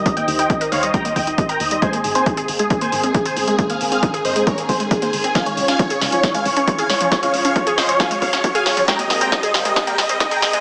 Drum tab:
HH |xxoxxxoxxxoxxxox|xxoxxxoxxxoxxxox|xxoxxxoxxxoxxxox|xxoxxxoxxxoxxxox|
SD |----------------|----------------|----------------|o--o--o-o-----o-|
BD |o---o---o-o-o---|o---o---o---o---|o---o---o-o-o---|o---o---o---o---|

HH |xxoxxxoxxxoxxxox|xxoxxxoxxxoxxxox|
SD |o-----o-o--o--o-|o-o-o-o-o-o-o-o-|
BD |o---o---o-o-o---|o---o---o---o---|